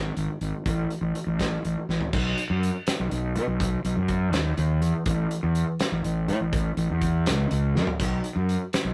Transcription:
0.17 0.27 G#1 medium
0.17 closed hi-hat medium
0.41 0.51 G#1 medium
0.41 closed hi-hat medium
0.66 0.85 A1 medium
0.66 kick loud
0.66 closed hi-hat medium
0.90 closed hi-hat medium
1.01 1.12 A1 medium
1.15 closed hi-hat medium
1.27 1.56 A1 medium
1.39 kick medium
1.39 snare loud
1.39 closed hi-hat medium
1.65 1.74 A1 medium
1.65 closed hi-hat medium
1.89 1.98 A1 medium
1.89 snare soft
2.01 floor tom medium
2.13 2.32 B1 medium
2.13 kick loud
2.13 crash loud
2.38 closed hi-hat medium
2.50 2.69 F#2 medium
2.63 closed hi-hat medium
2.87 snare loud
2.87 closed hi-hat loud
3.00 3.09 B1 medium
3.11 3.37 B1 medium
3.11 closed hi-hat medium
3.36 3.45 B2 medium
3.36 closed hi-hat medium
3.48 3.77 B1 medium
3.60 kick loud
3.60 closed hi-hat loud
3.85 3.94 B1 medium
3.85 closed hi-hat medium
3.97 4.32 F#2 medium
4.08 kick medium
4.08 closed hi-hat medium
4.32 4.52 D#2 medium
4.32 snare loud
4.32 closed hi-hat medium
4.57 4.82 D#2 medium
4.57 closed hi-hat medium
4.82 4.91 E2 medium
4.82 closed hi-hat medium
5.06 5.25 A1 loud
5.06 kick loud
5.06 closed hi-hat medium
5.31 closed hi-hat medium
5.43 5.62 E2 medium
5.55 closed hi-hat medium
5.79 snare loud
5.79 closed hi-hat medium
5.92 6.01 A1 medium
6.04 6.30 A1 medium
6.04 closed hi-hat medium
6.28 6.38 A2 medium
6.28 closed hi-hat medium
6.41 6.70 A1 medium
6.53 kick loud
6.53 closed hi-hat medium
6.77 6.87 A1 medium
6.77 closed hi-hat medium
6.90 7.29 E2 medium
7.01 kick medium
7.01 closed hi-hat medium
7.26 7.46 C#2 medium
7.26 snare loud
7.26 closed hi-hat loud
7.51 7.77 C#2 medium
7.51 closed hi-hat medium
7.75 7.85 F#2 medium
7.75 snare medium
7.87 floor tom medium
8.00 8.19 B1 medium
8.00 kick loud
8.00 closed hi-hat medium
8.00 splash medium
8.24 closed hi-hat medium
8.36 8.55 F#2 medium
8.49 closed hi-hat medium
8.73 snare loud
8.73 closed hi-hat loud
8.85 8.94 B1 medium

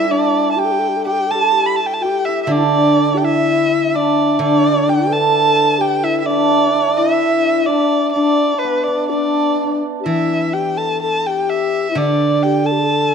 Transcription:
0.00 1.53 G3 medium
0.00 0.12 D4 medium
0.00 0.59 G4 medium
0.00 1.31 A4 medium
0.00 0.13 E5 medium
0.04 2.28 E4 medium
0.09 0.58 D4 medium
0.09 2.51 D4 medium
0.09 0.51 D5 medium
0.52 0.60 A5 medium
0.56 0.66 G4 medium
0.56 1.06 G4 medium
0.56 1.06 G5 medium
0.65 0.73 A4 medium
0.72 0.81 G4 medium
0.79 0.90 A4 medium
0.89 0.98 G4 medium
0.97 1.07 A4 medium
1.06 1.14 G4 medium
1.06 2.04 G4 medium
1.06 1.32 G5 medium
1.12 1.21 A4 soft
1.20 1.28 G4 medium
1.27 1.37 A4 soft
1.31 4.23 A4 medium
1.31 1.68 A5 medium
1.35 1.45 G4 medium
1.44 1.54 A4 medium
1.52 1.79 G4 medium
1.66 1.78 B5 medium
1.76 1.88 A5 medium
1.86 1.95 G5 medium
1.94 2.03 A5 medium
2.00 2.51 G4 medium
2.00 2.27 G5 medium
2.05 4.88 G4 medium
2.25 3.21 E4 medium
2.25 2.43 E5 medium
2.43 4.38 D3 medium
2.43 2.53 E5 medium
2.49 2.59 D4 medium
2.49 3.94 D4 medium
2.49 3.19 D5 medium
2.57 2.65 E4 medium
2.64 3.16 D4 medium
3.15 3.25 G4 soft
3.15 3.26 G5 medium
3.22 6.03 E4 medium
3.22 3.97 E4 medium
3.22 3.97 E5 medium
3.94 4.41 D4 medium
3.94 4.41 D5 medium
4.39 7.20 D3 medium
4.39 6.30 D4 medium
4.39 5.11 D4 medium
4.39 4.91 D5 medium
4.88 5.80 G4 medium
4.88 5.14 G5 medium
5.07 5.80 A4 medium
5.07 7.79 B4 soft
5.12 8.05 A4 medium
5.12 5.82 A5 medium
5.79 6.05 G4 medium
5.79 8.95 G4 medium
5.79 6.05 G5 medium
6.04 7.00 E4 medium
6.04 6.25 E4 medium
6.04 6.19 E5 medium
6.20 6.27 E5 medium
6.26 6.68 D4 medium
6.26 6.98 D5 medium
6.30 6.36 D4 medium
6.37 6.43 D4 soft
6.43 6.50 D4 soft
6.51 6.56 D4 soft
6.57 6.66 D4 soft
6.67 6.73 D4 soft
6.74 6.81 D4 soft
6.81 6.88 D4 soft
6.88 7.68 D4 soft
6.96 7.70 E4 medium
6.96 7.67 E5 medium
7.01 10.48 E4 medium
7.66 8.15 D4 medium
7.66 8.11 D5 medium
8.12 8.53 D4 medium
8.12 8.87 D4 medium
8.12 8.61 D5 medium
8.56 8.85 B4 medium
8.56 8.64 D5 medium
8.62 12.77 B3 medium
8.62 9.11 B4 medium
8.84 9.12 D4 medium
8.84 9.08 D5 medium
9.09 9.82 D4 medium
9.09 9.78 D5 medium
9.13 9.19 D4 soft
9.19 9.26 D4 soft
9.26 9.34 D4 soft
9.34 9.39 D4 soft
9.40 9.49 D4 soft
9.50 9.55 D4 soft
9.55 9.64 D4 soft
9.64 9.71 D4 soft
9.71 13.14 D4 soft
10.00 10.08 G4 soft
10.06 12.87 E3 soft
10.06 10.55 E4 medium
10.06 10.55 E5 medium
10.53 10.79 G4 medium
10.53 10.79 G5 medium
10.78 11.01 A4 medium
10.78 11.01 A5 medium
11.02 11.19 A4 medium
11.02 11.28 A5 medium
11.19 11.29 A4 medium
11.26 11.90 G4 medium
11.26 11.51 G5 medium
11.50 11.99 E5 medium
11.91 11.97 E4 soft
11.95 13.14 D3 medium
11.95 12.42 D4 medium
11.95 12.44 D5 medium
12.43 12.66 G4 medium
12.43 12.67 G5 medium
12.65 12.73 A4 medium
12.65 13.14 A5 medium
12.72 12.81 G4 medium
12.80 13.14 A4 medium

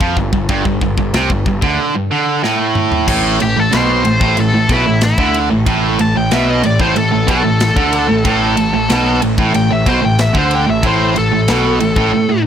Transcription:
0.00 0.16 F2 medium
0.00 0.16 F3 loud
0.00 kick loud
0.17 0.32 G1 medium
0.17 0.32 G2 medium
0.17 kick medium
0.33 0.48 G1 medium
0.33 0.49 G2 medium
0.33 kick medium
0.49 0.64 G1 medium
0.49 0.64 G2 loud
0.49 kick loud
0.49 ride bell medium
0.65 0.81 G1 medium
0.65 0.81 G2 medium
0.65 kick loud
0.81 0.97 G1 medium
0.81 0.96 G2 medium
0.81 kick medium
0.98 1.13 G1 medium
0.98 1.14 G2 medium
0.98 kick medium
1.13 1.29 C2 medium
1.13 1.29 C3 loud
1.13 snare loud
1.13 ride bell medium
1.30 1.45 G1 medium
1.30 1.45 G2 medium
1.30 kick medium
1.46 1.61 G1 medium
1.46 1.63 G2 medium
1.46 kick medium
1.62 1.78 D2 medium
1.62 1.94 D3 medium
1.62 kick loud
1.95 2.11 G2 medium
2.11 2.43 D3 loud
2.44 3.08 A2 loud
2.44 snare medium
2.75 mid tom medium
2.92 floor tom medium
3.08 3.38 A1 loud
3.08 3.40 A2 loud
3.08 kick loud
3.08 crash loud
3.40 3.57 A1 medium
3.40 3.56 A2 medium
3.40 3.59 G4 medium
3.40 ride medium
3.57 3.72 A1 medium
3.57 3.73 A2 medium
3.57 3.76 A4 medium
3.73 4.03 B1 medium
3.73 4.05 B2 loud
3.73 4.37 C5 medium
3.73 snare loud
3.73 ride loud
4.05 4.20 A1 medium
4.05 4.20 A2 medium
4.05 ride medium
4.21 4.36 A1 loud
4.21 4.37 A2 loud
4.21 kick loud
4.37 4.53 A1 medium
4.37 4.53 A2 medium
4.37 4.70 A4 medium
4.37 ride loud
4.54 4.69 A1 medium
4.54 4.70 A2 medium
4.69 4.85 B1 medium
4.69 4.86 B2 loud
4.69 5.03 E4 loud
4.69 kick loud
4.69 ride medium
4.87 5.17 A1 medium
4.87 5.12 A2 medium
5.01 5.35 E4 loud
5.01 snare loud
5.01 ride loud
5.18 5.48 D2 loud
5.18 5.50 D3 loud
5.18 kick loud
5.34 ride medium
5.51 5.66 A1 medium
5.51 5.66 A2 medium
5.67 5.97 A1 loud
5.67 5.98 A2 loud
5.67 kick loud
5.67 ride loud
5.99 6.14 A1 medium
5.99 6.15 A2 medium
5.99 6.17 A5 loud
5.99 ride medium
6.16 6.31 A1 medium
6.16 6.32 A2 medium
6.16 6.32 G5 medium
6.31 6.62 B1 medium
6.31 6.63 B2 loud
6.31 6.50 E5 loud
6.31 snare loud
6.31 ride loud
6.50 6.64 D#5 medium
6.63 6.79 A1 medium
6.63 6.79 A2 medium
6.63 6.81 D5 medium
6.63 ride medium
6.80 6.95 A1 medium
6.80 6.95 A2 loud
6.80 6.96 C5 loud
6.80 kick loud
6.96 7.12 A1 medium
6.96 7.11 A2 medium
6.96 7.28 A4 medium
6.96 ride loud
7.12 7.28 A1 medium
7.12 7.27 A2 medium
7.27 7.43 B1 loud
7.27 7.43 B2 loud
7.27 9.19 A4 medium
7.27 kick loud
7.27 ride medium
7.44 7.75 A1 medium
7.44 7.70 A2 medium
7.60 snare loud
7.60 ride loud
7.76 8.07 D2 medium
7.76 8.08 D3 loud
7.76 kick loud
7.93 ride medium
8.09 8.25 A1 medium
8.09 8.24 A2 medium
8.25 8.55 A1 loud
8.25 8.57 A2 loud
8.25 kick loud
8.25 ride loud
8.57 8.73 A1 medium
8.57 8.73 A2 medium
8.57 ride medium
8.74 8.89 A1 medium
8.74 8.90 A2 medium
8.90 9.20 B1 loud
8.90 9.21 B2 loud
8.90 snare loud
8.90 ride loud
9.22 9.38 A1 medium
9.22 9.37 A2 medium
9.22 ride medium
9.38 9.53 A1 loud
9.38 9.53 A2 loud
9.38 kick loud
9.54 9.70 A1 medium
9.54 9.70 A2 medium
9.54 9.72 G5 loud
9.54 ride loud
9.71 9.86 A1 medium
9.71 9.87 A2 medium
9.71 9.87 E5 loud
9.86 10.02 B1 medium
9.86 10.02 B2 loud
9.86 10.04 C5 loud
9.86 kick loud
9.86 ride medium
10.03 10.34 A1 medium
10.03 10.29 A2 medium
10.03 10.21 G5 medium
10.19 10.36 E5 medium
10.19 snare loud
10.19 ride loud
10.35 10.65 D2 medium
10.35 10.67 D3 loud
10.35 10.53 C5 medium
10.35 kick loud
10.51 10.69 G5 loud
10.51 ride medium
10.68 10.83 A1 medium
10.68 10.83 A2 medium
10.68 10.85 E5 medium
10.83 11.14 A1 medium
10.83 11.15 A2 loud
10.83 11.17 C5 loud
10.83 kick loud
10.83 ride medium
11.16 11.32 A1 medium
11.16 11.31 A2 medium
11.16 12.42 A4 loud
11.16 ride medium
11.32 11.48 A1 medium
11.32 11.48 A2 medium
11.48 11.79 B1 loud
11.48 11.80 B2 loud
11.48 snare loud
11.48 ride loud
11.80 11.96 A1 medium
11.80 11.96 A2 medium
11.80 ride medium
11.96 12.12 A1 medium
11.96 12.12 A2 loud
11.96 kick loud
12.13 12.27 A2 medium
12.29 12.45 A2 medium

